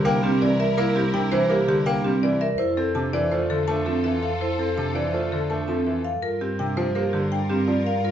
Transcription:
0.00 2.48 C2 medium
0.00 0.10 D3 medium
0.00 2.37 E4 medium
0.00 0.10 G4 medium
0.00 2.37 A#4 medium
0.05 0.28 A#3 loud
0.05 0.28 D4 medium
0.05 0.28 G5 loud
0.23 0.46 G3 medium
0.23 0.46 C4 loud
0.23 0.47 G4 medium
0.41 0.65 E3 medium
0.41 0.65 D5 medium
0.60 0.83 A#4 medium
0.60 0.83 E5 loud
0.77 1.01 A#3 loud
0.77 1.01 E4 medium
0.77 1.01 A#4 loud
0.95 1.19 C4 medium
0.95 1.19 G4 medium
1.13 1.37 C3 medium
1.13 1.37 D4 medium
1.13 1.37 G5 medium
1.32 1.56 E3 loud
1.32 1.55 C5 loud
1.32 1.56 C5 medium
1.49 1.73 A#3 medium
1.49 1.74 G4 loud
1.49 1.74 A#4 medium
1.68 1.92 D3 medium
1.68 1.92 G4 medium
1.86 2.10 A#3 loud
1.86 2.10 D4 medium
1.86 2.10 G5 loud
2.04 2.28 G3 medium
2.04 2.28 C4 medium
2.04 2.28 G4 medium
2.23 2.46 E3 medium
2.23 2.46 D5 medium
2.41 2.65 A#4 medium
2.41 2.65 E5 loud
2.58 6.12 F2 medium
2.58 2.83 E4 medium
2.58 6.00 F4 medium
2.58 6.00 A4 medium
2.58 2.82 C5 loud
2.77 3.01 C4 medium
2.77 3.01 A4 medium
2.95 3.19 C3 medium
2.95 3.19 D4 medium
2.95 3.19 A5 medium
3.13 3.37 E3 loud
3.13 3.37 C5 medium
3.13 3.37 D5 loud
3.32 3.56 A3 medium
3.32 3.56 F4 medium
3.32 3.55 C5 medium
3.50 3.74 D3 medium
3.50 3.74 A4 medium
3.68 3.92 A3 loud
3.68 3.92 D4 medium
3.68 3.92 A5 medium
3.86 4.10 F3 medium
3.86 4.10 C4 medium
3.86 4.10 A4 medium
4.04 4.28 E3 medium
4.04 4.28 E5 medium
4.23 4.46 A4 medium
4.23 4.46 F5 medium
4.41 4.64 E4 medium
4.41 4.65 C5 medium
4.59 4.83 C4 medium
4.59 4.83 A4 medium
4.77 5.01 C3 medium
4.77 5.01 D4 medium
4.77 5.01 A5 medium
4.95 5.19 E3 medium
4.95 5.19 C5 medium
4.95 5.19 D5 medium
5.13 5.37 A3 medium
5.13 5.37 F4 medium
5.13 5.37 C5 medium
5.32 5.55 D3 medium
5.32 5.56 A4 medium
5.50 5.74 A3 medium
5.50 5.74 D4 medium
5.50 5.74 A5 medium
5.68 5.92 F3 medium
5.68 5.92 C4 medium
5.68 5.92 A4 medium
5.87 6.10 E3 medium
5.87 6.10 E5 medium
6.04 6.28 A4 medium
6.04 6.28 F5 medium
6.22 8.11 G2 medium
6.22 8.11 F4 medium
6.22 6.46 F4 medium
6.22 8.11 A#4 medium
6.22 6.46 A#4 medium
6.41 6.65 C4 medium
6.41 6.65 G4 medium
6.59 6.83 C3 medium
6.59 6.83 D4 medium
6.59 6.83 G5 medium
6.77 7.01 F3 medium
6.77 7.01 C5 medium
6.95 7.19 A#3 medium
6.95 7.19 G4 medium
6.95 7.19 A#4 medium
7.13 7.37 D3 medium
7.13 7.37 G4 medium
7.32 7.55 D4 medium
7.32 7.55 G5 medium
7.50 7.74 G3 medium
7.50 7.74 C4 medium
7.50 7.73 G4 medium
7.68 7.92 F3 medium
7.68 7.92 D5 medium
7.86 8.10 A#4 medium
7.86 8.10 F5 medium
8.04 8.11 F4 medium
8.04 8.11 A#4 medium

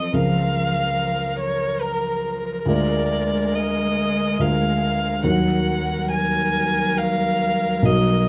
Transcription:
0.00 2.63 F3 soft
0.00 0.10 F4 soft
0.00 0.10 A4 soft
0.00 0.16 D#5 medium
0.13 2.62 C#2 soft
0.13 2.63 F3 soft
0.13 2.63 F4 soft
0.13 5.21 A#4 soft
0.13 2.63 A#4 soft
0.13 1.38 F5 medium
1.39 1.83 C#5 medium
1.81 2.24 A#4 medium
2.66 4.36 D2 soft
2.66 4.36 G#3 soft
2.66 5.21 G#3 medium
2.66 4.36 F4 soft
2.66 4.36 A#4 soft
2.66 3.56 D5 medium
3.55 4.42 D#5 medium
4.39 5.22 D2 soft
4.39 5.22 G#3 soft
4.39 5.22 F4 soft
4.39 5.23 A#4 soft
4.39 5.25 F5 medium
5.24 7.80 D#2 soft
5.24 7.80 F#3 soft
5.24 8.29 F#3 medium
5.24 7.80 F#4 soft
5.24 8.29 A#4 soft
5.24 7.80 A#4 soft
5.24 6.09 F#5 medium
6.11 6.99 G#5 medium
6.97 7.87 F5 medium
7.82 8.29 B1 soft
7.82 8.29 F#3 soft
7.82 8.29 F#4 soft
7.82 8.29 A#4 soft
7.82 8.29 D#5 medium

